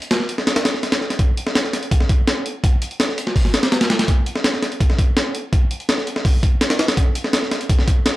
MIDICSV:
0, 0, Header, 1, 2, 480
1, 0, Start_track
1, 0, Tempo, 361446
1, 1582, Time_signature, 4, 2, 24, 8
1, 10844, End_track
2, 0, Start_track
2, 0, Title_t, "Drums"
2, 25, Note_on_c, 9, 42, 46
2, 144, Note_off_c, 9, 42, 0
2, 144, Note_on_c, 9, 38, 121
2, 144, Note_on_c, 9, 42, 91
2, 267, Note_off_c, 9, 38, 0
2, 267, Note_on_c, 9, 38, 35
2, 277, Note_off_c, 9, 42, 0
2, 385, Note_on_c, 9, 42, 71
2, 400, Note_off_c, 9, 38, 0
2, 507, Note_on_c, 9, 38, 58
2, 518, Note_off_c, 9, 42, 0
2, 624, Note_off_c, 9, 38, 0
2, 624, Note_on_c, 9, 38, 109
2, 624, Note_on_c, 9, 42, 82
2, 745, Note_off_c, 9, 38, 0
2, 745, Note_off_c, 9, 42, 0
2, 745, Note_on_c, 9, 38, 112
2, 745, Note_on_c, 9, 42, 81
2, 865, Note_off_c, 9, 38, 0
2, 865, Note_off_c, 9, 42, 0
2, 865, Note_on_c, 9, 38, 114
2, 865, Note_on_c, 9, 42, 86
2, 987, Note_off_c, 9, 38, 0
2, 987, Note_on_c, 9, 38, 36
2, 998, Note_off_c, 9, 42, 0
2, 1104, Note_off_c, 9, 38, 0
2, 1104, Note_on_c, 9, 38, 54
2, 1104, Note_on_c, 9, 42, 65
2, 1223, Note_off_c, 9, 38, 0
2, 1223, Note_off_c, 9, 42, 0
2, 1223, Note_on_c, 9, 38, 103
2, 1223, Note_on_c, 9, 42, 81
2, 1345, Note_off_c, 9, 38, 0
2, 1345, Note_on_c, 9, 38, 35
2, 1356, Note_off_c, 9, 42, 0
2, 1465, Note_off_c, 9, 38, 0
2, 1465, Note_on_c, 9, 38, 53
2, 1465, Note_on_c, 9, 42, 63
2, 1582, Note_on_c, 9, 36, 111
2, 1584, Note_off_c, 9, 42, 0
2, 1584, Note_on_c, 9, 42, 87
2, 1598, Note_off_c, 9, 38, 0
2, 1715, Note_off_c, 9, 36, 0
2, 1717, Note_off_c, 9, 42, 0
2, 1825, Note_on_c, 9, 42, 72
2, 1947, Note_on_c, 9, 38, 59
2, 1958, Note_off_c, 9, 42, 0
2, 2064, Note_off_c, 9, 38, 0
2, 2064, Note_on_c, 9, 38, 123
2, 2064, Note_on_c, 9, 42, 92
2, 2185, Note_off_c, 9, 38, 0
2, 2185, Note_on_c, 9, 38, 38
2, 2197, Note_off_c, 9, 42, 0
2, 2302, Note_off_c, 9, 38, 0
2, 2302, Note_on_c, 9, 38, 59
2, 2302, Note_on_c, 9, 42, 72
2, 2426, Note_off_c, 9, 42, 0
2, 2426, Note_on_c, 9, 42, 49
2, 2435, Note_off_c, 9, 38, 0
2, 2542, Note_on_c, 9, 36, 112
2, 2543, Note_off_c, 9, 42, 0
2, 2543, Note_on_c, 9, 42, 94
2, 2663, Note_on_c, 9, 38, 44
2, 2674, Note_off_c, 9, 36, 0
2, 2676, Note_off_c, 9, 42, 0
2, 2781, Note_on_c, 9, 36, 105
2, 2781, Note_on_c, 9, 42, 74
2, 2795, Note_off_c, 9, 38, 0
2, 2914, Note_off_c, 9, 36, 0
2, 2914, Note_off_c, 9, 42, 0
2, 3021, Note_on_c, 9, 38, 117
2, 3021, Note_on_c, 9, 42, 90
2, 3154, Note_off_c, 9, 38, 0
2, 3154, Note_off_c, 9, 42, 0
2, 3263, Note_on_c, 9, 42, 71
2, 3396, Note_off_c, 9, 42, 0
2, 3501, Note_on_c, 9, 36, 118
2, 3501, Note_on_c, 9, 42, 93
2, 3634, Note_off_c, 9, 36, 0
2, 3634, Note_off_c, 9, 42, 0
2, 3742, Note_on_c, 9, 42, 68
2, 3864, Note_off_c, 9, 42, 0
2, 3864, Note_on_c, 9, 42, 45
2, 3981, Note_off_c, 9, 42, 0
2, 3981, Note_on_c, 9, 38, 121
2, 3981, Note_on_c, 9, 42, 92
2, 4102, Note_off_c, 9, 38, 0
2, 4102, Note_on_c, 9, 38, 35
2, 4114, Note_off_c, 9, 42, 0
2, 4222, Note_on_c, 9, 42, 73
2, 4235, Note_off_c, 9, 38, 0
2, 4342, Note_on_c, 9, 38, 55
2, 4355, Note_off_c, 9, 42, 0
2, 4459, Note_on_c, 9, 36, 114
2, 4459, Note_on_c, 9, 46, 83
2, 4475, Note_off_c, 9, 38, 0
2, 4581, Note_on_c, 9, 38, 43
2, 4592, Note_off_c, 9, 36, 0
2, 4592, Note_off_c, 9, 46, 0
2, 4699, Note_off_c, 9, 38, 0
2, 4699, Note_on_c, 9, 38, 114
2, 4699, Note_on_c, 9, 42, 82
2, 4821, Note_off_c, 9, 38, 0
2, 4821, Note_off_c, 9, 42, 0
2, 4821, Note_on_c, 9, 38, 115
2, 4821, Note_on_c, 9, 42, 82
2, 4941, Note_off_c, 9, 38, 0
2, 4941, Note_off_c, 9, 42, 0
2, 4941, Note_on_c, 9, 38, 105
2, 4941, Note_on_c, 9, 42, 82
2, 5060, Note_off_c, 9, 38, 0
2, 5060, Note_off_c, 9, 42, 0
2, 5060, Note_on_c, 9, 38, 110
2, 5060, Note_on_c, 9, 42, 77
2, 5179, Note_off_c, 9, 38, 0
2, 5179, Note_off_c, 9, 42, 0
2, 5179, Note_on_c, 9, 38, 106
2, 5179, Note_on_c, 9, 42, 79
2, 5302, Note_off_c, 9, 38, 0
2, 5302, Note_off_c, 9, 42, 0
2, 5302, Note_on_c, 9, 38, 104
2, 5302, Note_on_c, 9, 42, 79
2, 5420, Note_on_c, 9, 36, 115
2, 5421, Note_off_c, 9, 42, 0
2, 5421, Note_on_c, 9, 42, 92
2, 5435, Note_off_c, 9, 38, 0
2, 5553, Note_off_c, 9, 36, 0
2, 5554, Note_off_c, 9, 42, 0
2, 5663, Note_on_c, 9, 42, 71
2, 5784, Note_on_c, 9, 38, 56
2, 5795, Note_off_c, 9, 42, 0
2, 5902, Note_off_c, 9, 38, 0
2, 5902, Note_on_c, 9, 38, 125
2, 5902, Note_on_c, 9, 42, 89
2, 6025, Note_off_c, 9, 38, 0
2, 6025, Note_on_c, 9, 38, 37
2, 6034, Note_off_c, 9, 42, 0
2, 6142, Note_off_c, 9, 38, 0
2, 6142, Note_on_c, 9, 38, 60
2, 6142, Note_on_c, 9, 42, 71
2, 6266, Note_off_c, 9, 42, 0
2, 6266, Note_on_c, 9, 42, 46
2, 6275, Note_off_c, 9, 38, 0
2, 6381, Note_on_c, 9, 36, 116
2, 6383, Note_off_c, 9, 42, 0
2, 6383, Note_on_c, 9, 42, 91
2, 6503, Note_on_c, 9, 38, 44
2, 6514, Note_off_c, 9, 36, 0
2, 6516, Note_off_c, 9, 42, 0
2, 6620, Note_on_c, 9, 36, 101
2, 6624, Note_on_c, 9, 42, 73
2, 6636, Note_off_c, 9, 38, 0
2, 6753, Note_off_c, 9, 36, 0
2, 6756, Note_off_c, 9, 42, 0
2, 6861, Note_on_c, 9, 38, 124
2, 6861, Note_on_c, 9, 42, 91
2, 6994, Note_off_c, 9, 38, 0
2, 6994, Note_off_c, 9, 42, 0
2, 7100, Note_on_c, 9, 42, 71
2, 7233, Note_off_c, 9, 42, 0
2, 7339, Note_on_c, 9, 36, 118
2, 7340, Note_on_c, 9, 42, 95
2, 7472, Note_off_c, 9, 36, 0
2, 7473, Note_off_c, 9, 42, 0
2, 7580, Note_on_c, 9, 42, 68
2, 7703, Note_off_c, 9, 42, 0
2, 7703, Note_on_c, 9, 42, 45
2, 7819, Note_off_c, 9, 42, 0
2, 7819, Note_on_c, 9, 38, 126
2, 7819, Note_on_c, 9, 42, 92
2, 7941, Note_off_c, 9, 38, 0
2, 7941, Note_on_c, 9, 38, 39
2, 7952, Note_off_c, 9, 42, 0
2, 8061, Note_on_c, 9, 42, 70
2, 8073, Note_off_c, 9, 38, 0
2, 8182, Note_on_c, 9, 38, 55
2, 8194, Note_off_c, 9, 42, 0
2, 8299, Note_on_c, 9, 36, 113
2, 8300, Note_on_c, 9, 46, 85
2, 8314, Note_off_c, 9, 38, 0
2, 8432, Note_off_c, 9, 36, 0
2, 8433, Note_off_c, 9, 46, 0
2, 8538, Note_on_c, 9, 36, 100
2, 8539, Note_on_c, 9, 42, 73
2, 8671, Note_off_c, 9, 36, 0
2, 8672, Note_off_c, 9, 42, 0
2, 8779, Note_on_c, 9, 38, 108
2, 8779, Note_on_c, 9, 42, 80
2, 8899, Note_off_c, 9, 38, 0
2, 8899, Note_off_c, 9, 42, 0
2, 8899, Note_on_c, 9, 38, 100
2, 8899, Note_on_c, 9, 42, 81
2, 9020, Note_off_c, 9, 38, 0
2, 9020, Note_off_c, 9, 42, 0
2, 9020, Note_on_c, 9, 38, 105
2, 9020, Note_on_c, 9, 42, 79
2, 9141, Note_off_c, 9, 38, 0
2, 9141, Note_off_c, 9, 42, 0
2, 9141, Note_on_c, 9, 38, 108
2, 9141, Note_on_c, 9, 42, 77
2, 9259, Note_off_c, 9, 42, 0
2, 9259, Note_on_c, 9, 36, 113
2, 9259, Note_on_c, 9, 42, 95
2, 9273, Note_off_c, 9, 38, 0
2, 9391, Note_off_c, 9, 36, 0
2, 9392, Note_off_c, 9, 42, 0
2, 9499, Note_on_c, 9, 42, 72
2, 9619, Note_on_c, 9, 38, 55
2, 9632, Note_off_c, 9, 42, 0
2, 9738, Note_off_c, 9, 38, 0
2, 9738, Note_on_c, 9, 38, 122
2, 9738, Note_on_c, 9, 42, 94
2, 9862, Note_off_c, 9, 38, 0
2, 9862, Note_on_c, 9, 38, 38
2, 9870, Note_off_c, 9, 42, 0
2, 9980, Note_off_c, 9, 38, 0
2, 9980, Note_on_c, 9, 38, 61
2, 9980, Note_on_c, 9, 42, 73
2, 10103, Note_off_c, 9, 42, 0
2, 10103, Note_on_c, 9, 42, 46
2, 10112, Note_off_c, 9, 38, 0
2, 10219, Note_off_c, 9, 42, 0
2, 10219, Note_on_c, 9, 36, 119
2, 10219, Note_on_c, 9, 42, 95
2, 10340, Note_on_c, 9, 38, 41
2, 10352, Note_off_c, 9, 36, 0
2, 10352, Note_off_c, 9, 42, 0
2, 10459, Note_on_c, 9, 36, 102
2, 10461, Note_on_c, 9, 42, 71
2, 10473, Note_off_c, 9, 38, 0
2, 10592, Note_off_c, 9, 36, 0
2, 10594, Note_off_c, 9, 42, 0
2, 10700, Note_on_c, 9, 38, 119
2, 10700, Note_on_c, 9, 42, 95
2, 10833, Note_off_c, 9, 38, 0
2, 10833, Note_off_c, 9, 42, 0
2, 10844, End_track
0, 0, End_of_file